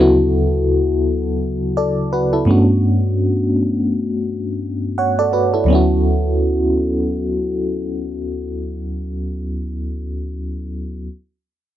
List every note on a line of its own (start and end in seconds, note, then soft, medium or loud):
0.00 2.42 D2 medium
0.00 2.44 C#3 medium
0.00 2.43 F#3 medium
0.00 2.43 B3 medium
0.00 1.73 E4 medium
0.00 1.74 F#4 medium
0.00 0.17 A4 medium
1.77 2.11 A4 soft
1.77 2.10 D5 medium
2.13 2.32 F#4 soft
2.13 2.32 B4 medium
2.33 2.67 E4 soft
2.33 2.66 A4 medium
2.45 4.92 G2 medium
2.45 4.93 A3 medium
2.45 4.93 B3 medium
2.45 4.94 C#4 medium
2.50 4.94 D4 medium
2.50 4.95 F#4 medium
4.98 5.18 C#5 soft
4.98 5.17 F#5 soft
5.19 5.33 A4 soft
5.19 5.33 D5 medium
5.33 5.53 F#4 soft
5.33 5.53 B4 medium
5.54 5.71 E4 soft
5.54 5.88 A4 soft
5.64 9.35 D2 medium
5.64 9.37 F#3 medium
5.68 9.39 B3 medium
5.68 9.41 C#4 medium
5.73 9.43 E4 medium
5.73 9.46 F#4 medium